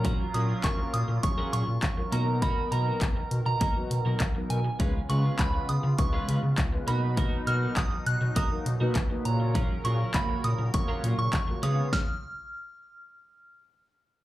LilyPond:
<<
  \new Staff \with { instrumentName = "Synth bell" } { \time 4/4 \key fis \major \tempo 4 = 101 ais''8 dis'''8 cis'''8 dis'''8 cis'''8 cis'''4 ais''8 | b''8 ais''4~ ais''16 ais''4.~ ais''16 gis''8~ | gis''8 cis'''8 b''8 dis'''8 cis'''8 r4 b''8~ | b''8 eis'''8 dis'''8 fis'''8 dis'''8 r4 ais''8~ |
ais''8 cis'''8 b''8 dis'''8 cis'''8. cis'''8. dis'''8 | eis'''2. r4 | }
  \new Staff \with { instrumentName = "Analog polysynth" } { \time 4/4 \key fis \major <fis cis' eis' ais'>16 r16 <fis cis' eis' ais'>16 r16 <fis cis' eis' ais'>8 r8 <fis cis' eis' gis'>8. r8 <fis cis' eis' ais'>16 <fis b dis' ais'>8~ | <fis b dis' ais'>4 r4 r16 <fis b dis' fis'>16 r16 <fis b dis' ais'>16 r16 <fis b dis' ais'>8 r16 | <gis cis' eis' b'>16 r16 <gis cis' eis' b'>16 r16 <gis cis' eis' b'>8 r8 <gis cis' eis' b'>8. r8 <gis cis' eis' b'>16 <b dis' fis' b'>8~ | <b dis' fis' b'>4 r4 r16 <ais dis' fis' ais'>16 r16 <ais dis' fis' b'>16 r16 <ais dis' fis' b'>16 <ais eis' fis' cis''>8~ |
<ais eis' fis' cis''>16 r16 <ais eis' fis' gis'>16 r16 <ais eis' fis' cis''>8 r8 <ais eis' fis' cis''>8. r8 <ais eis' fis' cis''>16 <b eis' gis' cis''>8 | r1 | }
  \new Staff \with { instrumentName = "Clean electric guitar" } { \time 4/4 \key fis \major <fis cis' eis' ais'>16 r16 <fis cis' eis' ais'>16 <fis cis' eis' ais'>16 r4 r16 <fis cis' eis' ais'>16 <fis cis' eis' ais'>16 r8. <ais dis' fis' ais'>16 r16 | <ais dis' fis' ais'>16 r16 <ais dis' fis' ais'>16 <ais dis' fis' ais'>16 r4 <ais dis' fis' ais'>16 r8 <ais dis' fis' ais'>16 r4 | <gis cis' eis' b'>16 r16 <gis cis' eis' b'>16 <gis cis' eis' b'>16 r4 r16 <gis cis' eis' b'>16 <gis cis' eis' b'>16 r8. <ais dis' fis' ais'>16 r16 | <ais dis' fis' ais'>16 r16 <ais dis' fis' ais'>16 <ais dis' fis' ais'>16 r4 <ais dis' fis' ais'>16 r8 <ais dis' fis' ais'>16 r4 |
<fis cis' eis' ais'>16 r16 <fis cis' eis' ais'>16 <fis cis' eis' ais'>16 r4 r16 <fis cis' eis' ais'>16 <fis cis' eis' ais'>16 r8. <gis cis' eis' b'>16 r16 | r1 | }
  \new Staff \with { instrumentName = "Supersaw synth" } { \time 4/4 \key fis \major << { <fis eis'>2.~ <fis eis'>8 <dis ais'>8~ | <dis ais'>1 | <cis eis'>2.~ <cis eis'>8 <b, dis'>8~ | <b, dis'>2.~ <b, dis'>8 <cis ais'>8~ |
<cis ais'>2.~ <cis ais'>8 <cis eis'>8 | r1 | } \\ { ais2.~ ais8 b8~ | b1~ | b2.~ b8 fis8~ | fis1~ |
fis2.~ fis8 b8 | r1 | } >> }
  \new Staff \with { instrumentName = "Analog synth bass" } { \clef bass \time 4/4 \key fis \major ais,8 ais,8 ais,,8 ais,16 ais,16 ais,,8 ais,16 ais,16 ais,,8 b,8~ | b,8 b,8 b,,8 b,16 b,16 b,,8 b,16 b,16 b,,8 b,8 | cis,8 cis8 cis,8 cis16 cis16 cis,8 cis16 cis16 cis,8 b,8~ | b,8 b,8 b,,8 b,16 b,16 b,,8 b,16 b,16 b,,8 ais,8~ |
ais,8 ais,8 ais,,8 ais,16 ais,16 ais,,8 ais,16 ais,16 ais,,8 cis8 | r1 | }
  \new DrumStaff \with { instrumentName = "Drums" } \drummode { \time 4/4 <hh bd>8 hh8 <hc hh bd>8 hh8 <hh bd>8 hh8 <hc hh bd>8 hh8 | <hh bd>8 hh8 <hc hh bd>8 hh8 <hh bd>8 hh8 <hc hh bd>8 hh8 | <hh bd>8 hh8 <hc hh bd>8 hh8 <hh bd>8 hh8 <hc hh bd>8 hh8 | <hh bd>8 hh8 <hc hh bd>8 hh8 <hh bd>8 hh8 <hc hh bd>8 hh8 |
<hh bd>8 hh8 <hc hh bd>8 hh8 <hh bd>8 hh8 <hc hh bd>8 hh8 | <bd sn>4 r4 r4 r4 | }
>>